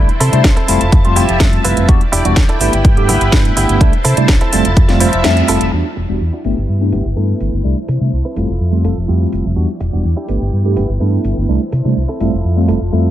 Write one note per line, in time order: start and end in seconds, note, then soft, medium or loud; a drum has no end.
0.00 0.66 E4 medium
0.00 0.68 C5 medium
0.00 1.87 A5 loud
0.09 closed hi-hat soft
0.20 0.29 C3 medium
0.20 0.33 C4 medium
0.20 0.33 E4 loud
0.20 0.33 A4 loud
0.20 open hi-hat loud
0.32 0.40 C3 loud
0.32 0.43 G3 medium
0.32 0.44 A3 medium
0.32 0.44 D4 medium
0.32 0.44 E4 medium
0.32 closed hi-hat medium
0.44 0.53 C2 medium
0.44 kick loud
0.44 snare loud
0.44 closed hi-hat soft
0.56 0.68 C4 medium
0.56 0.67 E4 medium
0.56 0.68 A4 medium
0.56 closed hi-hat soft
0.68 0.77 F1 medium
0.68 1.87 F3 medium
0.68 0.80 G3 medium
0.68 0.80 A3 medium
0.68 0.80 C4 medium
0.68 1.07 E4 medium
0.68 0.80 E4 medium
0.68 1.07 F4 medium
0.68 1.07 A4 loud
0.68 1.87 E5 medium
0.68 open hi-hat loud
0.81 0.88 F1 medium
0.81 closed hi-hat medium
0.92 1.18 F2 medium
0.92 kick loud
0.92 closed hi-hat medium
1.04 1.22 G3 medium
1.04 1.23 A3 medium
1.04 1.23 C4 medium
1.04 1.23 F4 loud
1.04 closed hi-hat soft
1.16 1.25 F1 loud
1.16 1.40 E4 loud
1.16 1.40 F4 medium
1.16 1.41 G4 loud
1.16 open hi-hat loud
1.29 1.37 F1 medium
1.29 closed hi-hat soft
1.40 1.56 F2 medium
1.40 1.85 G3 medium
1.40 1.86 A3 medium
1.40 1.86 C4 medium
1.40 1.86 E5 medium
1.40 kick loud
1.40 snare loud
1.40 closed hi-hat medium
1.53 closed hi-hat soft
1.64 1.73 F1 loud
1.64 1.88 E4 medium
1.64 1.88 F4 medium
1.64 1.89 B4 medium
1.64 open hi-hat loud
1.77 1.84 F1 loud
1.77 closed hi-hat medium
1.88 1.97 E2 medium
1.88 2.00 G3 medium
1.88 2.00 B3 medium
1.88 2.00 D4 medium
1.88 4.50 E4 medium
1.88 2.00 F#4 loud
1.88 2.60 D5 medium
1.88 3.79 G5 loud
1.88 kick loud
1.88 closed hi-hat medium
2.01 closed hi-hat soft
2.12 2.21 E1 medium
2.12 2.25 D4 loud
2.12 2.25 E4 loud
2.12 2.25 G4 loud
2.12 open hi-hat loud
2.24 2.33 E1 loud
2.24 2.36 G3 medium
2.24 2.36 B3 medium
2.24 2.36 D4 medium
2.24 2.36 F#4 medium
2.24 closed hi-hat medium
2.36 2.45 E2 medium
2.36 muted clean electric guitar stroke soft
2.36 kick loud
2.36 snare loud
2.36 closed hi-hat medium
2.49 2.61 D4 medium
2.49 2.60 E4 medium
2.49 2.60 A4 loud
2.49 closed hi-hat soft
2.60 2.69 G1 medium
2.60 2.72 A3 medium
2.60 2.72 B3 medium
2.60 2.99 B3 medium
2.60 2.72 D4 medium
2.60 2.99 E4 medium
2.60 2.72 E4 medium
2.60 2.99 G4 loud
2.60 3.79 B4 medium
2.60 open hi-hat loud
2.73 2.80 G1 medium
2.73 closed hi-hat medium
2.85 3.10 G2 medium
2.85 kick loud
2.85 closed hi-hat medium
2.96 3.14 A3 medium
2.96 3.15 B3 medium
2.96 3.15 D4 medium
2.96 3.15 G4 medium
2.96 closed hi-hat soft
3.09 3.17 G1 loud
3.09 3.33 B3 loud
3.09 3.33 E4 loud
3.09 3.33 G4 loud
3.09 open hi-hat loud
3.21 3.29 G1 medium
3.21 closed hi-hat medium
3.32 3.49 G2 medium
3.32 3.78 A3 medium
3.32 3.78 B3 medium
3.32 3.78 D4 medium
3.32 3.78 E4 medium
3.32 kick loud
3.32 snare loud
3.32 closed hi-hat medium
3.45 closed hi-hat soft
3.57 3.65 G1 loud
3.57 3.81 B3 medium
3.57 3.81 E4 medium
3.57 3.81 G4 medium
3.57 open hi-hat loud
3.69 3.77 G1 loud
3.69 closed hi-hat medium
3.80 3.89 C2 loud
3.80 3.92 G3 medium
3.80 3.92 A3 medium
3.80 3.92 D4 medium
3.80 3.92 E4 loud
3.80 4.52 C5 medium
3.80 5.71 A5 loud
3.80 kick loud
3.80 closed hi-hat medium
3.93 closed hi-hat soft
4.04 4.13 C3 medium
4.04 4.17 C4 loud
4.04 4.17 E4 loud
4.04 4.17 A4 loud
4.04 open hi-hat loud
4.17 4.25 C3 loud
4.17 4.28 G3 medium
4.17 4.28 A3 medium
4.17 4.28 D4 medium
4.17 4.28 E4 medium
4.17 closed hi-hat medium
4.28 4.37 C2 medium
4.28 kick loud
4.28 snare loud
4.28 closed hi-hat medium
4.41 4.53 C4 medium
4.41 4.51 E4 medium
4.41 4.52 A4 medium
4.41 closed hi-hat soft
4.52 4.61 F1 medium
4.52 5.71 F3 medium
4.52 4.64 G3 medium
4.52 4.64 A3 medium
4.52 4.64 C4 medium
4.52 4.91 E4 medium
4.52 4.64 E4 medium
4.52 4.91 F4 medium
4.52 4.91 A4 loud
4.52 5.71 E5 medium
4.52 open hi-hat loud
4.65 4.73 F1 medium
4.65 closed hi-hat medium
4.77 5.02 F2 medium
4.77 kick loud
4.77 closed hi-hat medium
4.88 5.07 G3 medium
4.88 5.07 A3 medium
4.88 5.07 C4 medium
4.88 5.07 F4 medium
4.88 snare soft
4.88 closed hi-hat soft
5.00 5.09 F1 loud
5.00 5.25 E4 loud
5.00 5.25 F4 medium
5.00 5.25 C5 loud
5.00 open hi-hat loud
5.13 5.21 F1 medium
5.13 closed hi-hat medium
5.24 5.41 F2 medium
5.24 5.70 G3 medium
5.24 5.70 A3 medium
5.24 5.70 C4 medium
5.24 5.70 E5 medium
5.24 snare loud
5.24 closed hi-hat medium
5.37 closed hi-hat soft
5.48 5.57 F1 medium
5.48 5.73 E4 medium
5.48 5.73 F4 medium
5.48 5.73 A4 medium
5.48 open hi-hat loud
5.61 5.69 F1 medium
5.61 closed hi-hat medium
5.72 5.81 E2 medium
5.72 5.84 G3 medium
5.72 5.84 B3 medium
5.72 5.84 D4 medium
5.72 7.63 E4 medium
5.72 5.84 F#4 medium
5.72 6.44 D5 medium
5.72 7.63 G5 medium
5.96 6.05 E1 medium
5.96 muted clean electric guitar stroke loud
5.96 open hi-hat medium
6.09 6.17 E1 medium
6.09 6.20 G3 medium
6.09 6.20 B3 medium
6.09 6.20 D4 medium
6.09 6.20 F#4 medium
6.09 muted clean electric guitar stroke soft
6.21 6.29 E2 medium
6.33 6.45 D4 medium
6.33 6.44 E4 medium
6.33 6.44 F#4 medium
6.44 6.53 G1 medium
6.44 6.56 A3 medium
6.44 6.56 B3 medium
6.44 6.83 B3 medium
6.44 6.56 D4 medium
6.44 6.83 E4 medium
6.44 6.56 E4 medium
6.44 6.83 G4 medium
6.44 7.63 B4 medium
6.44 open hi-hat loud
6.57 6.65 G1 medium
6.69 6.94 G2 medium
6.80 6.98 A3 medium
6.80 6.99 B3 medium
6.80 6.99 D4 medium
6.80 6.99 G4 medium
6.92 7.01 G1 loud
6.92 7.05 B3 loud
6.92 7.05 E4 medium
6.92 7.05 G4 loud
6.92 open hi-hat loud
7.05 7.13 G1 medium
7.16 7.32 G2 medium
7.16 7.62 A3 medium
7.16 7.53 B3 medium
7.16 7.62 B3 medium
7.16 7.62 D4 medium
7.16 7.53 E4 medium
7.16 7.62 E4 medium
7.16 7.53 A4 medium
7.40 7.49 G1 loud
7.40 open hi-hat medium
7.53 7.60 G1 medium
7.64 7.73 C2 medium
7.64 7.76 G3 medium
7.64 7.76 A3 medium
7.64 7.76 D4 medium
7.64 8.36 E4 medium
7.64 7.76 E4 medium
7.64 8.36 C5 medium
7.64 9.55 A5 medium
7.88 7.97 C3 medium
7.88 muted clean electric guitar stroke loud
7.88 open hi-hat loud
8.00 8.09 C3 medium
8.00 8.11 G3 medium
8.00 8.12 A3 medium
8.00 8.12 D4 medium
8.00 8.12 E4 medium
8.00 muted clean electric guitar stroke soft
8.13 8.21 C2 medium
8.25 8.37 C4 medium
8.25 8.35 E4 medium
8.25 8.36 B4 medium
8.36 8.45 F1 medium
8.36 9.55 F3 medium
8.36 8.48 G3 medium
8.36 8.48 A3 medium
8.36 8.48 C4 medium
8.36 8.75 E4 medium
8.36 8.48 E4 medium
8.36 8.75 F4 medium
8.36 8.75 A4 medium
8.36 9.55 E5 medium
8.36 open hi-hat loud
8.49 8.57 F1 medium
8.61 8.86 F2 medium
8.72 8.90 G3 medium
8.72 8.90 A3 medium
8.72 8.90 C4 medium
8.72 8.90 F4 medium
8.84 8.93 F1 loud
8.84 8.97 E4 medium
8.84 8.97 F4 medium
8.84 8.97 A4 loud
8.84 open hi-hat loud
8.97 9.05 F1 medium
9.08 9.25 F2 medium
9.08 9.53 G3 medium
9.08 9.53 A3 medium
9.08 9.54 C4 medium
9.08 9.45 E4 medium
9.08 9.45 F4 medium
9.08 9.45 G4 medium
9.08 9.54 E5 medium
9.33 9.41 F1 loud
9.33 open hi-hat loud
9.45 9.53 F1 medium
9.56 9.65 E2 medium
9.56 9.68 G3 medium
9.56 9.68 B3 medium
9.56 9.68 D4 medium
9.56 12.18 E4 medium
9.56 9.68 F#4 loud
9.56 10.28 D5 medium
9.56 11.47 G5 loud
9.80 9.89 E1 medium
9.80 muted clean electric guitar stroke loud
9.80 open hi-hat loud
9.92 10.01 E1 medium
9.92 10.03 G3 medium
9.92 10.04 B3 medium
9.92 10.04 D4 medium
9.92 10.04 F#4 medium
9.92 muted clean electric guitar stroke soft
10.05 10.13 E2 medium
10.17 10.28 D4 medium
10.17 10.27 E4 medium
10.17 10.27 G4 medium
10.28 10.37 G1 medium
10.28 10.40 A3 medium
10.28 10.40 B3 medium
10.28 10.67 B3 medium
10.28 10.40 D4 medium
10.28 10.67 E4 medium
10.28 10.40 E4 medium
10.28 10.67 G4 loud
10.28 11.47 B4 medium
10.28 open hi-hat loud
10.41 10.49 G1 medium
10.53 10.78 G2 medium
10.65 10.82 A3 medium
10.65 10.83 B3 medium
10.65 10.83 D4 medium
10.65 10.83 G4 medium
10.76 10.85 G1 medium
10.76 10.89 B3 loud
10.76 10.89 E4 medium
10.76 10.89 G4 loud
10.76 open hi-hat loud
10.89 10.97 G1 medium
11.00 11.16 G2 medium
11.00 11.46 A3 medium
11.00 11.37 B3 medium
11.00 11.46 B3 medium
11.00 11.46 D4 medium
11.00 11.37 E4 medium
11.00 11.46 E4 medium
11.00 11.37 A4 medium
11.24 11.33 G1 medium
11.24 open hi-hat loud
11.37 11.44 G1 loud
11.48 11.57 C2 medium
11.48 11.60 G3 medium
11.48 11.60 A3 medium
11.48 11.60 D4 medium
11.48 11.60 E4 medium
11.48 12.20 C5 medium
11.48 12.19 A5 medium
11.72 11.81 C3 medium
11.72 muted clean electric guitar stroke loud
11.72 open hi-hat loud
11.84 11.92 C3 medium
11.84 11.96 G3 medium
11.84 11.96 A3 medium
11.84 11.96 D4 medium
11.84 11.96 E4 medium
11.84 muted clean electric guitar stroke soft
11.96 12.05 C2 medium
12.09 12.20 C4 medium
12.09 12.19 E4 medium
12.09 12.19 A4 medium
12.20 12.29 F1 medium
12.20 13.11 F3 medium
12.20 12.32 G3 medium
12.20 12.32 A3 medium
12.20 12.32 C4 medium
12.20 12.59 E4 medium
12.20 12.32 E4 medium
12.20 12.59 F4 medium
12.20 12.59 A4 medium
12.20 13.11 E5 medium
12.20 13.11 A5 medium
12.20 open hi-hat loud
12.33 12.40 F1 medium
12.44 12.70 F2 medium
12.56 12.74 G3 medium
12.56 12.75 A3 medium
12.56 12.75 C4 medium
12.56 12.75 F4 medium
12.68 12.77 F1 medium
12.68 12.81 E4 loud
12.68 12.81 F4 medium
12.68 12.81 A4 loud
12.68 open hi-hat loud
12.81 12.88 F1 medium
12.92 13.08 F2 medium
12.92 13.11 G3 medium
12.92 13.11 A3 medium
12.92 13.11 C4 medium
12.92 13.11 E4 medium
12.92 13.11 F4 medium
12.92 13.11 A4 medium
12.92 13.11 E5 medium